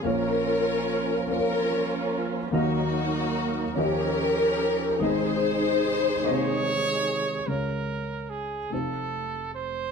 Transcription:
<<
  \new Staff \with { instrumentName = "Trumpet" } { \time 6/8 \key des \major \tempo 4. = 48 r2. | r2. | r4. des''4. | bes'4 aes'8 a'4 c''8 | }
  \new Staff \with { instrumentName = "String section" } { \time 6/8 \key des \major << { bes'4. bes'4 r8 | ges'4. bes'4. | c''2~ c''8 r8 | r2. | } \\ { <des' f'>4. <des' f'>4. | <bes ees'>4. <des' g'>4. | <ees' aes'>2~ <ees' aes'>8 r8 | r2. | } >> }
  \new Staff \with { instrumentName = "Grand piano" } { \time 6/8 \key des \major <bes des' f' des''>4. <bes des' f' c'' des''>4. | <bes ees' ges' ees''>4. <des' f' ges' g' ees''>4. | <ces' c' ees' aes' ees''>4. <c bes ees' aes' ees''>4. | <aes des' f' des''>4. <a ees' f' c''>4. | }
  \new Staff \with { instrumentName = "Grand piano" } { \clef bass \time 6/8 \key des \major <bes,, bes,>2. | <ees, ees>4. <ees, ees>4. | <aes,, aes,>2. | <des, des>4. <f,, f,>4. | }
  \new Staff \with { instrumentName = "Tonewheel organ" } { \time 6/8 \key des \major <f bes des' bes'>2. | <f ges bes ees' bes'>4. <f des' ees' g'>4. | <c ees aes bes aes'>2. | r2. | }
>>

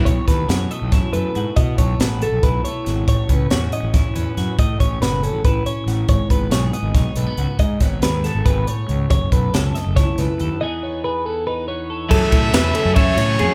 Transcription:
<<
  \new Staff \with { instrumentName = "Trumpet" } { \time 7/8 \key b \mixolydian \tempo 4 = 139 r2. r8 | r2. r8 | r2. r8 | r2. r8 |
r2. r8 | r2. r8 | r2. r8 | r2. r8 |
e''2 cis''4. | }
  \new Staff \with { instrumentName = "Clean electric guitar" } { \time 7/8 \key b \mixolydian cis''8 b'8 cis''8 dis''8 cis''8 b'4 | dis''8 cis''8 b'8 a'8 b'8 cis''4 | cis''8 b'8 cis''8 dis''8 cis''8 b'4 | dis''8 cis''8 b'8 a'8 b'8 cis''4 |
cis''8 b'8 cis''8 dis''8 cis''8 b'4 | dis''8 cis''8 b'8 a'8 b'8 cis''4 | cis''8 b'8 cis''8 dis''8 cis''8 b'4 | dis''8 cis''8 b'8 a'8 b'8 cis''4 |
a'4 b'8 a'8 e''8 cis''8 gis'8 | }
  \new Staff \with { instrumentName = "Clean electric guitar" } { \time 7/8 \key b \mixolydian << { r8 a8 fis'8 a8 e'8 a8 fis'8 | r8 a8 fis'8 a8 e'8 a8 fis'8 | r8 cis'8 fis'8 cis'8 e'8 cis'8 fis'8 | r8 cis'8 fis'8 cis'8 e'8 cis'8 fis'8 |
r8 b8 gis'8 b8 dis'8 a16 b16 fis'8 | r8 b8 gis'8 b2 | r8 a8 a'8 a8 e'8 a8 a'8 | <e b dis' gis'>8 b8 gis'8 b8 dis'8 b8 a'8 |
r2. r8 | } \\ { <b, e>2.~ <b, e>8 | b,2.~ b,8 | a,2.~ a,8 | a,2.~ a,8 |
gis,2.~ gis,8 | gis,2 b,8 a,8 gis,8 | fis,2.~ fis,8 | e,2.~ e,8 |
r2. r8 | } >> }
  \new Staff \with { instrumentName = "Overdriven electric guitar" } { \clef bass \time 7/8 \key b \mixolydian r2. r8 | r2. r8 | r2. r8 | r2. r8 |
r2. r8 | r2. r8 | r2. r8 | r2. r8 |
<fis, cis fis a cis'>8 <fis a cis'>8 <fis, cis fis a cis'>8 <fis a cis'>8 <cis fis a cis'>8 <fis a cis'>8 <fis, cis fis a cis'>8 | }
  \new Staff \with { instrumentName = "Fingered electric bass" } { \clef bass \time 7/8 \key b \mixolydian b,,16 r16 dis,8 fis,8 r16 b,,16 fis,16 r16 fis,16 r16 gis,16 r16 | b,8 b,,8 a,,8. b,,16 b,,8 r8 gis,,8 | a,,16 r16 cis,8 e,8 r16 a,,16 e,16 r16 e,16 r16 fis,16 r16 | a,8 a,,8 fis,,8. a,,16 a,,8 r8 a,,8 |
gis,,16 r16 gis,,8 b,,8 r16 gis,,16 b,,16 r16 b,,16 r16 cis,16 r16 | gis,8 gis,,8 dis,8. gis,,16 gis,,8 r8 cis,8 | fis,,16 r16 b,,8 cis,8 r16 fis,,16 cis,16 r16 cis,16 r16 dis,16 r16 | r2. r8 |
fis,16 r16 a,8 e,8 r16 fis,8. a,8 fis,16 r16 | }
  \new DrumStaff \with { instrumentName = "Drums" } \drummode { \time 7/8 <hh bd>8 <hh bd sn>8 <hh sn>8 hh8 <hh bd sn>8 hh8 hh8 | <hh bd>8 <hh bd>8 <hh sn>8 hh8 <hh bd>8 hh8 <hh sn>8 | <hh bd>8 <hh bd>8 <hh sn>8 hh8 <hh bd sn>8 hh8 <hh sn>8 | <hh bd>8 <hh bd>8 <hh sn>8 hh8 <hh bd>8 hh8 <hh sn>8 |
<hh bd>8 <hh bd>8 <hh sn>8 hh8 <hh bd sn>8 hh8 hh8 | <hh bd>8 <hh bd sn>8 <hh sn>8 <hh sn>8 <hh bd>8 hh8 hh8 | <hh bd>8 <hh bd>8 <hh sn>8 <hh sn>8 <hh bd sn>8 <hh sn>8 hh8 | r4 r4 r4. |
<cymc bd>8 <bd cymr>8 <cymr sn>8 cymr8 <bd cymr>8 <cymr sn>8 cymr8 | }
>>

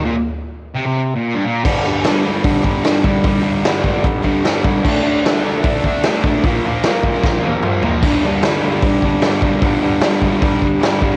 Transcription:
<<
  \new Staff \with { instrumentName = "Distorted electric guitar" } { \clef bass \time 4/4 \key g \minor \tempo 4 = 150 bes,16 r4. c16 c8. bes,8 g,16 bes,8 | <g, d g>8 <g, d g>8 <g, d g>8 <g, d g>8 <g, d g>8 <g, d g>8 <g, d g>8 <g, d g>8 | <g, d g>8 <g, d g>8 <g, d g>8 <g, d g>8 <g, d g>8 <g, d g>8 <g, d g>8 <g, d g>8 | <d a d'>8 <d a d'>8 <d a d'>8 <d a d'>8 <d a d'>8 <d a d'>8 <d a d'>8 <d a d'>8 |
<bes, f bes>8 <bes, f bes>8 <bes, f bes>8 <bes, f bes>8 <bes, f bes>8 <bes, f bes>8 <bes, f bes>8 <bes, f bes>8 | <g, d g>8 <g, d g>8 <g, d g>8 <g, d g>8 <g, d g>8 <g, d g>8 <g, d g>8 <g, d g>8 | <g, d g>8 <g, d g>8 <g, d g>8 <g, d g>8 <g, d g>8 <g, d g>8 <g, d g>8 <g, d g>8 | }
  \new DrumStaff \with { instrumentName = "Drums" } \drummode { \time 4/4 r4 r4 r4 r4 | <cymc bd>4 <hho sn>4 <hho bd>8 bd8 <hho sn>8 bd8 | <hho bd>4 <hho sn>8 bd8 <hho bd>8 bd8 <hho sn>8 bd8 | <cymc bd>4 <hho sn>4 <hho bd>8 bd8 <hho sn>8 bd8 |
<hho bd>4 <hho sn>8 bd8 <bd sn>8 tommh8 toml8 tomfh8 | <cymc hho bd>4 <hho sn>4 <hho bd>8 bd8 <hho sn>8 bd8 | <hho bd>4 <hho sn>8 bd8 <hho bd>8 bd8 <hho sn>8 bd8 | }
>>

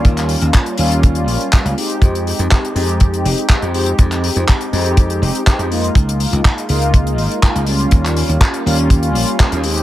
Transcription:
<<
  \new Staff \with { instrumentName = "Analog polysynth" } { \time 4/4 \key f \minor \tempo 4 = 122 <g bes des' f'>4. <g bes des' f'>4. <g bes des' f'>8 <aes c' ees' g'>8~ | <aes c' ees' g'>4. <aes c' ees' g'>4. <aes c' ees' g'>8 <aes c' ees' g'>8~ | <aes c' ees' g'>4. <aes c' ees' g'>4. <aes c' ees' g'>8 <aes bes ees' f'>8~ | <aes bes ees' f'>4. <aes bes ees' f'>4. <aes bes ees' f'>8 <g bes des' f'>8~ |
<g bes des' f'>4. <g bes des' f'>4. <g bes des' f'>8 <aes c' ees' g'>8 | }
  \new Staff \with { instrumentName = "Slap bass" } { \clef bass \time 4/4 \key f \minor ees,8 r16 ees,16 r8 ees,4 bes,,16 r8 des,16 r8 | f,8 r16 f,16 r8 f,4 f,,16 r8 f,8 r16 | f,8 r16 f,16 r8 f,4 f,,16 r8 f,8 r16 | des,8 r16 des,16 r8 des,4 aes,,16 r8 des,8 r16 |
ees,8 r16 ees,16 r8 ees,4 bes,,16 r8 ees,8 r16 | }
  \new DrumStaff \with { instrumentName = "Drums" } \drummode { \time 4/4 <hh bd>16 <hc hh>16 hho16 hh16 <hc hh bd>16 hh16 hho16 hh16 <hh bd>16 hh16 hho16 hh16 <hc hh bd>16 hh16 hho16 hh16 | <hh bd>16 hh16 hho16 hh16 <hc hh bd>16 hh16 hho16 hh16 <hh bd>16 hh16 hho16 hh16 <hc hh bd>16 hh16 hho16 hh16 | <hh bd>16 <hc hh>16 hho16 hh16 <hc hh bd>16 hh16 hho16 hh16 <hh bd>16 hh16 hho16 hh16 <hc hh bd>16 hh16 hho16 hh16 | <hh bd>16 hh16 hho16 hh16 <hc hh bd>16 hh16 hho16 hh16 <hh bd>16 hh16 hho16 hh16 <hc hh bd>16 hh16 hho16 hh16 |
<hh bd>16 <hc hh>16 hho16 hh16 <hc hh bd>16 hh16 hho16 hh16 <hh bd>16 hh16 hho16 hh16 <hc hh bd>16 hh16 hho16 hh16 | }
>>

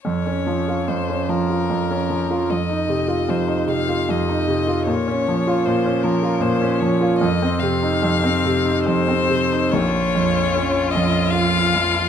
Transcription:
<<
  \new Staff \with { instrumentName = "Violin" } { \time 3/4 \key bes \minor \tempo 4 = 75 des''4 c''8 bes'4. | ees''4 c''8 f''8 ees''4 | des''4 c''8 bes'8 c''8 des''8 | ees''8 f''4. c''4 |
des''4. ees''8 f''4 | }
  \new Staff \with { instrumentName = "Violin" } { \time 3/4 \key bes \minor r2. | r2. | r2. | r2. |
f'2. | }
  \new Staff \with { instrumentName = "Cello" } { \clef bass \time 3/4 \key bes \minor r2. | r2. | r2. | r2. |
f2. | }
  \new Staff \with { instrumentName = "Grand piano" } { \clef bass \time 3/4 \key bes \minor f,16 des'16 f16 f'16 f,16 des'16 f16 f'16 f,16 des'16 f16 f'16 | f,16 ees'16 c16 f'16 f,16 ees'16 c16 f'16 f,16 ees'16 c16 f'16 | bes,16 des'16 f16 f'16 bes,16 des'16 f16 f'16 bes,16 des'16 f16 f'16 | f,16 c'16 c16 ees'16 f,16 c'16 c16 ees'16 f,16 c'16 c16 ees'16 |
bes,,8 f,8 des'8 f,8 f'8 f,8 | }
>>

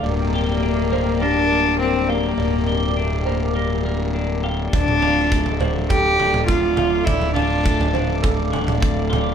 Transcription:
<<
  \new Staff \with { instrumentName = "Analog synth pad" } { \time 4/4 \key d \minor \tempo 4 = 102 << { <bes' g'' d'''>1~ | <bes' g'' d'''>1 | <a' f'' d'''>1~ | <a' f'' d'''>1 | } \\ { d''1~ | d''1~ | d''1~ | d''1 | } >> }
  \new Staff \with { instrumentName = "Felt piano" } { \time 4/4 \key d \minor d''4 r8 c''8 bes'4 r8 f''8 | d''4 r8 c''8 bes'4 r8 f''8 | d''4 r8 c''8 a'4 r8 f''8 | d''4 r8 c''8 a'4 r8 f''8 | }
  \new Staff \with { instrumentName = "Cello" } { \time 4/4 \key d \minor bes2 d'4 c'8 bes8~ | bes4 r2. | d'4. r8 g'4 f'4 | e'8 d'4. r2 | }
  \new Staff \with { instrumentName = "Clean electric guitar" } { \time 4/4 \key d \minor g,8 g'8 d'8 bes8 g8 bes8 d'8 g'8 | g,8 g'8 d'8 bes8 g8 bes8 d'8 g'8 | d,8 f'8 a8 d8 a,8 d8 a8 f'8 | d,8 f'8 a8 d8 a,8 d8 a8 f'8 | }
  \new Staff \with { instrumentName = "Fingered electric bass" } { \clef bass \time 4/4 \key d \minor d,,1 | d,,1 | d,,1 | d,,1 | }
  \new DrumStaff \with { instrumentName = "Drums" } \drummode { \time 4/4 r4 r4 r4 r4 | r4 r4 r4 r4 | <bd tomfh>16 toml16 tomfh8 bd16 tomfh16 tomfh8 <bd tomfh>8 tomfh16 <tomfh toml>16 bd8 <tomfh toml>8 | <bd tomfh>16 toml16 tomfh8 bd16 tomfh16 tomfh8 <bd tomfh>8 tomfh16 <tomfh toml>16 bd8 <tomfh toml>8 | }
>>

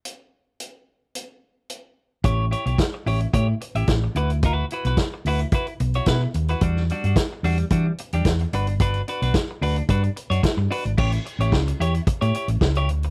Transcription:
<<
  \new Staff \with { instrumentName = "Clean electric guitar" } { \time 4/4 \key a \mixolydian \tempo 4 = 110 r1 | <e' g' cis''>16 r16 <e' g' cis''>16 <e' g' cis''>16 r8 <e' g' cis''>16 r16 <e' g' cis''>16 r8 <e' g' e''>16 r8 <e' fis' b'>16 r16 | <e' fis' b'>16 r16 <e' fis' b'>16 <e' fis' b'>16 r8 <e' fis' b'>16 r16 <e' fis' b'>16 r8 <e' fis' cis''>16 <e' fis' b'>16 r8 <e' fis' b'>16 | <g d' fis'>16 r16 <g d' fis'>16 <g d' fis'>16 r8 <g d' fis'>16 r16 <g d' fis'>16 r8 <g d' g'>16 r8 <d' fis' b'>16 r16 |
<d' fis' b'>16 r16 <d' fis' b'>16 <d' fis' b'>16 r8 <d' fis' b'>16 r16 <d' fis' b'>16 r8 <d' fis' cis''>16 r8 <d' fis' b'>16 r16 | <e' g' cis''>16 r8 <e' g' cis''>16 r8 <e' g' cis''>16 r8 <e' g' cis''>16 <e' g' cis''>16 r8 <e' g' cis''>16 r8 | }
  \new Staff \with { instrumentName = "Fingered electric bass" } { \clef bass \time 4/4 \key a \mixolydian r1 | a,,8. b,,16 r8 a,,8 a,8 r16 a,,16 a,,8 d,8~ | d,8. b,,16 r8 d,8 r8 b,,8 b,8 dis,8 | e,8. g,16 r8 e,8 e8 r16 e,16 e,8 g,,8~ |
g,,8. b,,16 r8 d,8 g,8 r16 fis,16 r16 g,16 r16 gis,,16 | a,,8 r16 a,,16 cis,8 e,8 r16 a,16 r16 a,,16 cis,8 d,8 | }
  \new DrumStaff \with { instrumentName = "Drums" } \drummode { \time 4/4 hh4 hh4 hh4 hh4 | <hh bd>8 hh16 hh16 <hh bd sn>8 hho16 hh16 <hh bd>8 hh16 hh16 <hh bd sn>8 hh16 hh16 | <hh bd>8 hh16 hh16 <hh bd sn>8 hho16 hh16 <hh bd>16 hh16 hh16 hh16 <hh bd sn>8 hh16 hh16 | <hh bd>16 sn16 hh16 hh16 <hh bd sn>8 hho16 hh16 <hh bd>8 hh16 hh16 <hh bd sn>16 hh16 hh16 hh16 |
<hh bd>16 hh16 hh16 hh16 <hh bd sn>8 hho16 hh16 <hh bd>16 hh16 hh16 hh16 <hh bd sn>8 hho16 hh16 | <cymc bd>16 hh16 hh16 hh16 <bd sn>16 hh16 hh16 hh16 <hh bd>16 hh16 hh16 hh16 <bd sn>16 hh16 hh16 hh16 | }
>>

